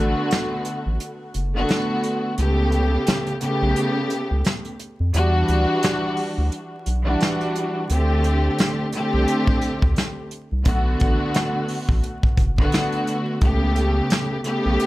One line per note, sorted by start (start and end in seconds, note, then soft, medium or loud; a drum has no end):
0.00 0.15 A1 medium
0.00 1.36 D3 loud
0.00 1.37 A3 loud
0.00 1.37 B3 medium
0.00 1.37 F#4 loud
0.31 snare loud
0.31 closed hi-hat loud
0.65 closed hi-hat medium
0.86 0.98 A1 medium
1.00 closed hi-hat medium
1.34 1.65 F#1 medium
1.34 closed hi-hat medium
1.55 2.32 D3 loud
1.55 2.33 A3 medium
1.55 2.33 B3 medium
1.55 2.33 F#4 loud
1.69 snare loud
1.69 closed hi-hat medium
2.03 closed hi-hat medium
2.38 2.98 C#2 loud
2.38 3.35 C#3 loud
2.38 3.35 A3 medium
2.38 3.35 B3 medium
2.38 3.35 G4 loud
2.38 closed hi-hat medium
2.72 closed hi-hat medium
3.07 snare loud
3.07 closed hi-hat loud
3.27 closed hi-hat medium
3.40 4.70 C#3 loud
3.40 4.70 A3 loud
3.40 4.70 B3 loud
3.40 4.71 G4 loud
3.40 closed hi-hat medium
3.62 3.74 B1 medium
3.76 closed hi-hat medium
4.10 closed hi-hat medium
4.31 4.43 C#2 medium
4.45 snare loud
4.45 closed hi-hat medium
4.65 closed hi-hat soft
4.79 closed hi-hat medium
5.00 5.12 F2 medium
5.14 5.44 E2 loud
5.14 6.89 E3 loud
5.14 6.89 G3 medium
5.14 6.89 D4 loud
5.14 6.90 F#4 loud
5.14 closed hi-hat medium
5.48 5.66 D2 medium
5.48 closed hi-hat medium
5.83 snare loud
5.83 closed hi-hat loud
6.17 open hi-hat medium
6.38 6.50 D2 medium
6.52 closed hi-hat medium
6.86 7.16 B1 medium
6.86 closed hi-hat medium
7.04 7.83 E3 loud
7.04 7.83 G3 medium
7.04 7.84 D4 loud
7.04 7.84 F#4 loud
7.21 snare loud
7.21 closed hi-hat medium
7.41 closed hi-hat soft
7.55 closed hi-hat medium
7.89 8.49 D2 loud
7.89 8.86 D3 loud
7.89 8.87 A3 loud
7.89 8.87 C4 medium
7.89 8.87 G4 loud
7.89 closed hi-hat medium
8.24 closed hi-hat medium
8.59 snare loud
8.59 closed hi-hat loud
8.92 10.23 D3 loud
8.92 10.23 A3 loud
8.92 10.23 C4 loud
8.92 10.23 G4 loud
8.92 closed hi-hat medium
9.14 9.26 C2 medium
9.28 closed hi-hat medium
9.47 kick loud
9.62 closed hi-hat medium
9.82 9.95 D2 medium
9.82 kick medium
9.96 snare loud
9.96 closed hi-hat medium
10.31 closed hi-hat medium
10.52 10.64 C2 medium
10.64 10.96 B1 loud
10.64 12.40 D3 loud
10.64 12.40 A3 loud
10.64 12.41 B3 medium
10.64 12.41 F#4 loud
10.64 kick loud
10.64 closed hi-hat loud
11.00 11.18 A1 medium
11.00 kick loud
11.00 closed hi-hat medium
11.34 snare loud
11.34 closed hi-hat loud
11.68 open hi-hat medium
11.89 12.01 A1 medium
11.89 kick medium
12.04 closed hi-hat medium
12.23 kick loud
12.37 12.68 F#1 medium
12.37 kick loud
12.37 closed hi-hat medium
12.58 13.36 D3 loud
12.58 13.36 A3 medium
12.58 13.36 B3 medium
12.58 13.37 F#4 loud
12.58 kick medium
12.72 snare loud
12.72 closed hi-hat medium
12.92 closed hi-hat soft
13.07 closed hi-hat medium
13.41 14.01 C#2 loud
13.41 14.38 C#3 loud
13.41 14.38 A3 loud
13.41 14.39 B3 medium
13.41 14.39 G4 loud
13.41 kick loud
13.41 closed hi-hat medium
13.76 closed hi-hat medium
14.10 snare loud
14.10 closed hi-hat loud
14.44 14.86 C#3 loud
14.44 14.86 A3 loud
14.44 14.86 B3 loud
14.44 14.86 G4 loud
14.44 closed hi-hat medium
14.66 14.78 B1 medium
14.80 closed hi-hat medium